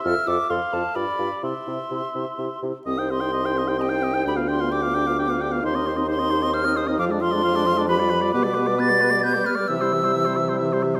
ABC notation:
X:1
M:3/4
L:1/16
Q:1/4=132
K:C
V:1 name="Flute"
f'2 d'2 c'2 a2 b4 | c'8- c'2 z2 | [K:Cm] e'2 c'6 g4 | =b2 c'2 d'8 |
c'4 c'4 f'2 e'2 | d'2 c'6 =b4 | [K:C] d'4 a'4 g'2 f'2 | e'8- e'2 z2 |]
V:2 name="Oboe"
e4 f4 d4 | e8- e2 z2 | [K:Cm] e g e g e g e g e g e g | g f g f g f g f g f g f |
c e c e c e c e c e c e | f d f d f d f d =B d B d | [K:C] B d B d B d B d B d B d | e c e c e c e c e c e c |]
V:3 name="Clarinet"
A2 A2 A2 A2 G2 G2 | G2 G2 G2 G2 G2 G2 | [K:Cm] G c G c G c G c G c G c | G F G F G F G F G F G F |
G E G E G E G E G E G E | F D F D F D F D G F G F | [K:C] G B G B G B G B G B G B | G E G E G E G E G E G E |]
V:4 name="French horn"
F2 F2 F2 F2 F2 F2 | E2 E2 E2 E2 E2 E2 | [K:Cm] C E C E C E C E C E C E | D =B, D B, D B, D B, D B, D B, |
E C E C E C E C E C E C | F, A, F, A, F, A, F, A, F, G, F, G, | [K:C] B, G, B, G, B, G, B, G, B, G, B, G, | E, G, E, G, E, G, E, G, E, G, E, G, |]
V:5 name="Bassoon" clef=bass
F,,2 F,,2 F,,2 F,,2 G,,2 G,,2 | C,2 C,2 C,2 C,2 C,2 C,2 | [K:Cm] C,,12 | D,,12 |
E,,12 | F,,12 | [K:C] B,,8- B,,2 z2 | C,12 |]